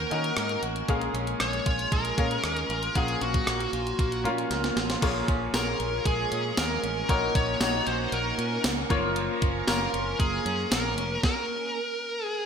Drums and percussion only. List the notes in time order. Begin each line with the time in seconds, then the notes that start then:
0.11 closed hi-hat
0.24 closed hi-hat
0.37 cross-stick, closed hi-hat
0.49 closed hi-hat
0.63 closed hi-hat
0.76 closed hi-hat
0.88 kick, closed hi-hat
1.01 closed hi-hat
1.15 closed hi-hat
1.27 closed hi-hat
1.40 cross-stick, closed hi-hat
1.53 closed hi-hat
1.66 kick, closed hi-hat
1.79 closed hi-hat
1.92 kick, closed hi-hat
2.05 closed hi-hat
2.18 kick, closed hi-hat
2.31 closed hi-hat
2.44 cross-stick, closed hi-hat
2.57 closed hi-hat
2.70 closed hi-hat
2.83 closed hi-hat
2.95 kick, closed hi-hat
3.08 closed hi-hat
3.21 closed hi-hat
3.34 kick, closed hi-hat
3.47 cross-stick, closed hi-hat
3.60 closed hi-hat
3.73 closed hi-hat
3.87 closed hi-hat
3.99 kick, closed hi-hat
4.12 closed hi-hat
4.25 closed hi-hat
4.38 closed hi-hat
4.51 snare, closed hi-hat
4.64 snare, closed hi-hat
4.77 snare, closed hi-hat
4.90 snare, closed hi-hat
5.02 kick, closed hi-hat, crash
5.28 kick, closed hi-hat
5.54 snare, closed hi-hat, tambourine
5.80 closed hi-hat
6.06 kick, closed hi-hat
6.32 closed hi-hat
6.57 snare, closed hi-hat, tambourine
6.84 closed hi-hat
7.09 kick, closed hi-hat
7.35 kick, closed hi-hat
7.61 snare, closed hi-hat, tambourine
7.87 closed hi-hat
8.12 closed hi-hat
8.39 closed hi-hat
8.64 snare, closed hi-hat, tambourine
8.90 kick, closed hi-hat
9.16 closed hi-hat
9.42 kick, closed hi-hat
9.68 snare, closed hi-hat, tambourine
9.94 closed hi-hat
10.20 kick, closed hi-hat
10.46 closed hi-hat
10.71 snare, closed hi-hat, tambourine
10.98 closed hi-hat
11.23 kick, snare